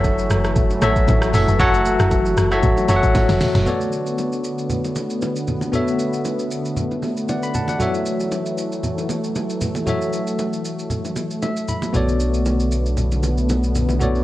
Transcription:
Already playing: F#1 E3 F#3 A3 F#4 A4 C#5 E5
0.04 kick, high bongo, shaker
0.19 shaker
0.30 F#1, cross-stick, shaker
0.44 cross-stick, shaker
0.56 kick, low conga, shaker
0.70 high bongo, shaker
0.81 A1 F#3 F#4 A4 C#5 E5, cross-stick, high bongo, low bongo, shaker
0.96 kick, shaker
1.08 A1, kick, high bongo, low bongo, shaker
1.22 cross-stick, shaker
1.33 F#1 F#3 F#4 A4 C#5 E5, open hi-hat, low conga, shaker
1.48 F#1, shaker
1.59 F#1 F#3 F#4 A4 C#5 F#5, kick, low conga, shaker
1.74 shaker
1.85 shaker
2.00 F#1, cross-stick, shaker
2.11 kick, high bongo, shaker
2.26 shaker
2.37 F#1, cross-stick, shaker
2.51 F#3 F#4 A4 C#5 E5, cross-stick, shaker
2.63 A1, kick, low conga, shaker
2.78 high bongo, shaker
2.88 F#1 F#3 F#4 A4 C#5 E5, high bongo, low bongo, shaker
2.96 F#5
3.03 A1, kick, shaker
3.15 A1, kick, snare, high bongo, low bongo, shaker
3.29 F#1, snare, shaker
3.41 snare, open hi-hat, low bongo, low conga, shaker
3.55 F#1, snare, shaker
3.65 D3 A3 B3 F#4 A4 C#5 D5, low conga, shaker
3.81 shaker
3.92 shaker
4.07 shaker
4.18 high bongo, shaker
4.32 shaker
4.44 shaker
4.58 shaker
4.70 low conga, shaker
4.84 high bongo, shaker
4.96 low bongo, shaker
5.10 shaker
5.22 high bongo, low bongo, shaker
5.36 shaker
5.48 low bongo, low conga, shaker
5.61 low bongo, shaker
5.72 B3 F#4 A4 C#5 E5, low conga, shaker
5.88 shaker
5.99 shaker
6.13 shaker
6.25 high bongo, shaker
6.39 shaker
6.51 shaker
6.65 shaker
6.77 low conga, shaker
6.91 high bongo, shaker
7.02 low bongo, shaker
7.17 shaker
7.29 D5 F#5, high bongo, low bongo, shaker
7.43 B5, shaker
7.54 F#5 A5, low bongo, low conga, shaker
7.68 D5 F#5, low bongo, shaker
7.79 E3 F#3 F#4 A4 C#5 E5, low conga, shaker
7.95 shaker
8.06 shaker
8.20 shaker
8.32 high bongo, shaker
8.46 shaker
8.58 shaker
8.72 shaker
8.83 low conga, shaker
8.98 high bongo, shaker
9.09 low bongo, shaker
9.24 shaker
9.36 high bongo, low bongo, shaker
9.50 shaker
9.61 low bongo, low conga, shaker
9.75 low bongo, shaker
9.86 F#3 F#4 A4 C#5 E5, low conga, shaker
10.02 shaker
10.13 shaker
10.27 shaker
10.39 high bongo, shaker
10.53 shaker
10.65 shaker
10.79 shaker
10.90 low conga, shaker
11.05 high bongo, shaker
11.16 low bongo, shaker
11.31 shaker
11.42 E5, high bongo, low bongo, shaker
11.57 shaker
11.68 B5, low conga, shaker
11.82 low bongo, shaker
11.93 B1 D3 B3 F#4 A4 C#5 D5, low conga, shaker
12.08 shaker
12.20 shaker
12.34 shaker
12.46 high bongo, shaker
12.60 shaker
12.72 shaker
12.86 shaker
12.97 low conga, shaker
13.12 high bongo, shaker
13.23 low bongo, shaker
13.38 shaker
13.49 high bongo, low bongo, shaker
13.64 shaker
13.75 low bongo, low conga, shaker
13.89 low bongo, shaker
14.00 B3 F#4 A4 C#5 D5, low conga, shaker
14.15 shaker

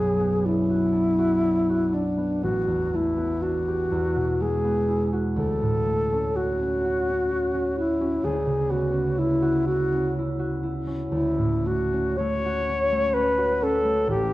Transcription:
Already playing: B1 F#2 F#3 G#3 F#4 G#4
0.19 B3
0.44 D4 E4
0.70 F#4
0.92 D4
1.18 F#4
1.43 D4
1.70 F#4
1.92 D4
2.17 B3
2.43 A1 F#4
2.67 E2
2.94 A3 E4
3.16 B3
3.42 D4 F#4
3.68 G4
3.91 E2
4.16 B2
4.41 G#3 G#4
4.64 B3
4.88 E4
5.13 F#4
5.36 D2 A4
5.62 A2
5.86 A3
6.12 C#4
6.36 F#4
6.62 C#4
6.85 F#4
7.10 C#4
7.31 F#4
7.54 C#4
7.78 E4 F#4
8.01 C#4
8.24 D2 G#4
8.46 C#3
8.69 B3 F#4
8.92 C#4
9.18 E4
9.42 F#4
9.67 E4 F#4
9.93 C#4
10.19 E4
10.39 F#4
10.63 E4
10.87 C#4
11.11 D2 E4
11.38 A2
11.65 A3 F#4
11.93 C#4
12.17 A3 C#5
12.45 F#4
12.69 C#4
12.92 A3
13.14 C#4 B4
13.38 F#4
13.62 C#4 A4
13.85 A3
14.07 A1 G4

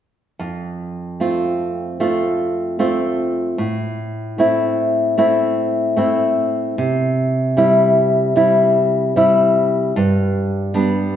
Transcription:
0.39 F2
1.20 A3 C4 F4
2.00 A3 C4 F4
2.79 A3 C4 F4
3.58 A2
4.38 A3 C4 E4
5.18 A3 C4 E4
5.96 A3 C4 E4
6.78 C3
7.57 G3 C4 E4
8.36 G3 C4 E4
9.16 G3 C4 E4
9.96 G2
10.74 G3 B3 D4

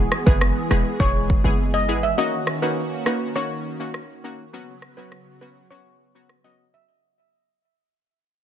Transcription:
Already playing: E3 G#3 B3 G#4
0.12 cross-stick
0.26 F#1 G#3 B3 E4 G#4 B4, kick
0.41 cross-stick
0.70 E1 G#3 B3 E4 G#4 B4, cross-stick
1.00 E1 G#3 B3 E4 G#4 C#5, kick
1.30 kick
1.44 F#1 G#3 B3 E4 G#4
1.74 D#5
1.88 G#1 G#3 B3 E4 G#4
2.03 E5
2.17 D#3 A#3 C#4 D#4 F#4 D#5
2.47 cross-stick
2.62 A#3 C#4 D#4 F#4 B4
3.06 A#3 C#4 D#4 F#4 B4, cross-stick
3.35 A#3 C#4 D#4 F#4 C#5
3.79 A#3 C#4 D#4 F#4
3.94 cross-stick
4.24 A#3 C#4 D#4 F#4
4.53 C#3 F#3 B3 C#4 F#4
4.82 cross-stick
4.97 F#3 B3 C#4 F#4 B4
5.12 cross-stick
5.41 F#3 B3 C#4 F#4 B4
5.71 F#3 B3 C#4 F#4 C#5
6.15 F#3 B3 C#4 F#4
6.29 cross-stick
6.44 F#3 B3 C#4 F#4 D#5
6.74 E5

